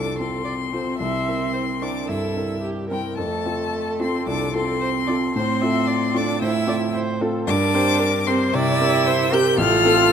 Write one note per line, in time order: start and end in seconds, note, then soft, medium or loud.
0.00 0.19 C2 soft
0.00 1.03 F2 soft
0.00 0.20 C4 soft
0.00 0.20 D4 medium
0.00 0.21 F4 soft
0.00 0.21 A4 soft
0.00 0.44 A4 medium
0.00 0.18 D6 medium
0.19 0.70 C4 soft
0.19 0.99 C4 medium
0.19 0.70 F4 soft
0.19 0.70 A4 soft
0.19 0.98 C6 medium
0.44 0.52 D5 medium
0.72 0.98 C4 soft
0.72 0.98 F4 soft
0.72 0.98 A4 soft
0.72 0.98 C5 soft
0.99 1.27 C2 soft
0.99 1.83 C4 medium
0.99 1.53 E5 medium
0.99 1.84 C6 medium
1.28 1.79 C4 soft
1.28 1.79 E4 soft
1.28 1.79 A#4 soft
1.53 1.61 C5 medium
1.80 2.07 C4 soft
1.80 2.10 D4 medium
1.80 2.07 E4 soft
1.80 2.07 A#4 soft
1.80 2.09 D6 medium
2.08 2.36 G2 soft
2.08 2.63 E4 medium
2.08 2.61 A4 medium
2.08 2.62 E6 medium
2.36 2.86 C4 soft
2.36 2.87 E4 soft
2.36 2.87 A#4 soft
2.61 2.89 G4 medium
2.89 2.98 G3 medium
2.89 3.15 C4 soft
2.89 3.16 E4 soft
2.89 3.19 A#4 medium
2.89 3.16 A#4 soft
2.89 3.16 G5 medium
3.17 3.45 F2 medium
3.17 4.03 A3 medium
3.17 4.27 A4 medium
3.17 3.99 A5 medium
3.45 3.96 C4 soft
3.45 3.97 F4 soft
3.45 3.97 A4 soft
4.00 4.24 C4 soft
4.00 4.29 C4 medium
4.00 4.25 F4 soft
4.00 4.25 A4 soft
4.00 4.27 C6 medium
4.27 4.53 C2 medium
4.27 4.54 D4 medium
4.27 4.80 A4 medium
4.27 4.54 D6 medium
4.54 5.04 C4 soft
4.54 5.34 C4 medium
4.54 5.05 F4 soft
4.54 5.05 A4 soft
4.54 5.35 C6 medium
4.81 4.89 C5 medium
5.07 5.33 C4 soft
5.07 5.33 F4 soft
5.07 5.33 A4 soft
5.07 5.15 D5 medium
5.35 5.62 A2 medium
5.35 6.18 C4 medium
5.35 5.63 C5 medium
5.35 6.18 C6 medium
5.61 6.11 C4 soft
5.61 6.12 F4 soft
5.61 6.12 A4 medium
5.61 5.89 E5 medium
5.88 6.40 D5 medium
6.14 6.39 C4 soft
6.14 6.42 D4 medium
6.14 6.39 F4 medium
6.14 6.39 A4 medium
6.14 6.41 D6 medium
6.41 6.68 A2 medium
6.41 6.95 E4 medium
6.41 6.49 C5 medium
6.41 6.94 E6 medium
6.66 7.17 C4 medium
6.66 7.17 F4 soft
6.66 7.17 A4 soft
6.66 6.76 D5 medium
6.94 7.23 C5 medium
7.21 7.46 C4 medium
7.21 7.46 F4 medium
7.21 7.47 A4 medium
7.21 7.46 A4 medium
7.47 7.74 G2 medium
7.47 8.24 D4 loud
7.47 7.76 A#4 medium
7.47 8.28 D6 loud
7.74 8.24 C4 medium
7.74 8.24 G4 medium
7.74 8.24 A#4 medium
7.74 8.01 C5 medium
7.99 8.29 A#4 medium
8.27 8.52 C4 medium
8.27 8.54 C4 medium
8.27 8.52 G4 medium
8.27 8.52 A#4 medium
8.27 8.54 C5 medium
8.27 8.56 C6 medium
8.53 8.80 C3 medium
8.53 9.35 E4 loud
8.53 9.08 D5 medium
8.53 9.35 E6 loud
8.80 9.30 C4 medium
8.80 9.30 G4 medium
8.80 9.30 A#4 medium
9.06 9.34 C5 medium
9.32 9.57 C4 medium
9.32 9.57 G4 medium
9.32 9.59 G4 medium
9.32 9.58 A#4 medium
9.32 9.59 G6 loud
9.58 9.84 A1 medium
9.58 10.12 F4 loud
9.58 10.12 A4 medium
9.58 10.12 F6 loud
9.85 10.12 C4 medium
9.85 10.12 F4 medium
9.85 10.12 A4 medium